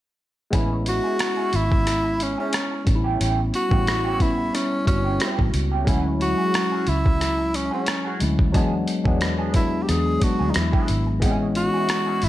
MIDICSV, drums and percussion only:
0, 0, Header, 1, 2, 480
1, 0, Start_track
1, 0, Key_signature, 3, "major"
1, 0, Tempo, 668151
1, 382, Time_signature, 4, 2, 24, 8
1, 8827, End_track
2, 0, Start_track
2, 0, Title_t, "Drums"
2, 380, Note_on_c, 9, 42, 80
2, 381, Note_on_c, 9, 36, 80
2, 452, Note_off_c, 9, 42, 0
2, 453, Note_off_c, 9, 36, 0
2, 619, Note_on_c, 9, 42, 67
2, 691, Note_off_c, 9, 42, 0
2, 857, Note_on_c, 9, 42, 71
2, 865, Note_on_c, 9, 37, 89
2, 929, Note_off_c, 9, 42, 0
2, 937, Note_off_c, 9, 37, 0
2, 1097, Note_on_c, 9, 42, 65
2, 1169, Note_off_c, 9, 42, 0
2, 1233, Note_on_c, 9, 36, 74
2, 1305, Note_off_c, 9, 36, 0
2, 1342, Note_on_c, 9, 42, 80
2, 1343, Note_on_c, 9, 37, 32
2, 1414, Note_off_c, 9, 42, 0
2, 1415, Note_off_c, 9, 37, 0
2, 1581, Note_on_c, 9, 42, 62
2, 1653, Note_off_c, 9, 42, 0
2, 1816, Note_on_c, 9, 42, 84
2, 1827, Note_on_c, 9, 37, 80
2, 1887, Note_off_c, 9, 42, 0
2, 1898, Note_off_c, 9, 37, 0
2, 2060, Note_on_c, 9, 42, 68
2, 2062, Note_on_c, 9, 36, 80
2, 2131, Note_off_c, 9, 42, 0
2, 2134, Note_off_c, 9, 36, 0
2, 2305, Note_on_c, 9, 42, 77
2, 2377, Note_off_c, 9, 42, 0
2, 2542, Note_on_c, 9, 42, 62
2, 2614, Note_off_c, 9, 42, 0
2, 2668, Note_on_c, 9, 36, 87
2, 2740, Note_off_c, 9, 36, 0
2, 2783, Note_on_c, 9, 42, 64
2, 2790, Note_on_c, 9, 37, 93
2, 2855, Note_off_c, 9, 42, 0
2, 2862, Note_off_c, 9, 37, 0
2, 3019, Note_on_c, 9, 36, 76
2, 3019, Note_on_c, 9, 42, 61
2, 3090, Note_off_c, 9, 42, 0
2, 3091, Note_off_c, 9, 36, 0
2, 3266, Note_on_c, 9, 42, 79
2, 3267, Note_on_c, 9, 37, 36
2, 3338, Note_off_c, 9, 42, 0
2, 3339, Note_off_c, 9, 37, 0
2, 3501, Note_on_c, 9, 36, 75
2, 3503, Note_on_c, 9, 42, 68
2, 3573, Note_off_c, 9, 36, 0
2, 3575, Note_off_c, 9, 42, 0
2, 3736, Note_on_c, 9, 42, 86
2, 3747, Note_on_c, 9, 37, 87
2, 3808, Note_off_c, 9, 42, 0
2, 3819, Note_off_c, 9, 37, 0
2, 3871, Note_on_c, 9, 36, 89
2, 3942, Note_off_c, 9, 36, 0
2, 3978, Note_on_c, 9, 42, 66
2, 4049, Note_off_c, 9, 42, 0
2, 4218, Note_on_c, 9, 36, 97
2, 4221, Note_on_c, 9, 42, 75
2, 4290, Note_off_c, 9, 36, 0
2, 4293, Note_off_c, 9, 42, 0
2, 4461, Note_on_c, 9, 42, 60
2, 4533, Note_off_c, 9, 42, 0
2, 4699, Note_on_c, 9, 42, 65
2, 4706, Note_on_c, 9, 37, 87
2, 4771, Note_off_c, 9, 42, 0
2, 4778, Note_off_c, 9, 37, 0
2, 4933, Note_on_c, 9, 42, 66
2, 5005, Note_off_c, 9, 42, 0
2, 5070, Note_on_c, 9, 36, 72
2, 5142, Note_off_c, 9, 36, 0
2, 5181, Note_on_c, 9, 42, 74
2, 5182, Note_on_c, 9, 37, 33
2, 5253, Note_off_c, 9, 42, 0
2, 5254, Note_off_c, 9, 37, 0
2, 5419, Note_on_c, 9, 42, 61
2, 5491, Note_off_c, 9, 42, 0
2, 5650, Note_on_c, 9, 42, 83
2, 5661, Note_on_c, 9, 37, 83
2, 5722, Note_off_c, 9, 42, 0
2, 5733, Note_off_c, 9, 37, 0
2, 5894, Note_on_c, 9, 42, 73
2, 5966, Note_off_c, 9, 42, 0
2, 6027, Note_on_c, 9, 36, 84
2, 6099, Note_off_c, 9, 36, 0
2, 6137, Note_on_c, 9, 36, 88
2, 6138, Note_on_c, 9, 42, 77
2, 6209, Note_off_c, 9, 36, 0
2, 6210, Note_off_c, 9, 42, 0
2, 6376, Note_on_c, 9, 42, 62
2, 6448, Note_off_c, 9, 42, 0
2, 6505, Note_on_c, 9, 36, 87
2, 6577, Note_off_c, 9, 36, 0
2, 6615, Note_on_c, 9, 42, 76
2, 6623, Note_on_c, 9, 37, 84
2, 6687, Note_off_c, 9, 42, 0
2, 6695, Note_off_c, 9, 37, 0
2, 6852, Note_on_c, 9, 42, 62
2, 6856, Note_on_c, 9, 36, 84
2, 6924, Note_off_c, 9, 42, 0
2, 6928, Note_off_c, 9, 36, 0
2, 7102, Note_on_c, 9, 42, 76
2, 7103, Note_on_c, 9, 37, 34
2, 7174, Note_off_c, 9, 42, 0
2, 7175, Note_off_c, 9, 37, 0
2, 7338, Note_on_c, 9, 42, 69
2, 7340, Note_on_c, 9, 36, 72
2, 7410, Note_off_c, 9, 42, 0
2, 7412, Note_off_c, 9, 36, 0
2, 7574, Note_on_c, 9, 42, 87
2, 7584, Note_on_c, 9, 37, 87
2, 7645, Note_off_c, 9, 42, 0
2, 7656, Note_off_c, 9, 37, 0
2, 7711, Note_on_c, 9, 36, 92
2, 7783, Note_off_c, 9, 36, 0
2, 7817, Note_on_c, 9, 42, 66
2, 7889, Note_off_c, 9, 42, 0
2, 8060, Note_on_c, 9, 36, 88
2, 8062, Note_on_c, 9, 42, 76
2, 8132, Note_off_c, 9, 36, 0
2, 8134, Note_off_c, 9, 42, 0
2, 8300, Note_on_c, 9, 42, 62
2, 8371, Note_off_c, 9, 42, 0
2, 8539, Note_on_c, 9, 42, 78
2, 8547, Note_on_c, 9, 37, 90
2, 8611, Note_off_c, 9, 42, 0
2, 8619, Note_off_c, 9, 37, 0
2, 8777, Note_on_c, 9, 46, 50
2, 8827, Note_off_c, 9, 46, 0
2, 8827, End_track
0, 0, End_of_file